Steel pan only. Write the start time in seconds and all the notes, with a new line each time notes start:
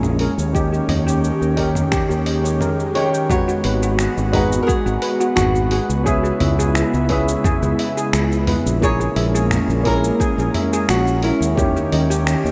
0.21 A#4
0.55 G4
0.73 G4
0.89 D#5
1.07 G4
1.58 A#4
1.92 G4
2.09 G4
2.26 D#5
2.44 C#5
2.61 A#4
2.95 C#5
3.13 G5
3.30 F#4
3.48 F#4
3.65 B4
3.83 F#4
4.33 G#4
4.68 F#4
4.86 F#4
5.02 B4
5.20 F#4
5.72 G#4
6.06 G#4
6.23 G#4
6.41 E5
6.59 G#4
7.10 B4
7.45 G#4
7.62 G#4
7.79 E5
7.97 G#4
8.48 B4
8.83 G#4
9.00 G#4
9.16 E5
9.35 G#4
9.86 A#4
10.20 G#4
10.39 G#4
10.55 E5
10.73 G#4
11.24 A#4
11.58 G4
11.77 G4
11.93 D#5
12.10 G4